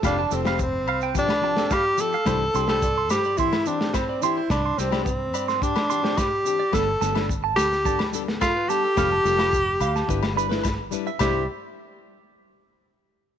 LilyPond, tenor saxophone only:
\new Staff \with { instrumentName = "Tenor saxophone" } { \time 4/4 \key c \major \tempo 4 = 107 d'8 c'8 c'4 d'4 g'8 a'8~ | a'8. a'8. g'8 e'8 d'8 c'8 e'8 | d'8 c'8 c'4 d'4 g'4 | a'8. r8. g'4 r8 f'8 g'8~ |
g'2~ g'8 r4. | g'8 r2. r8 | }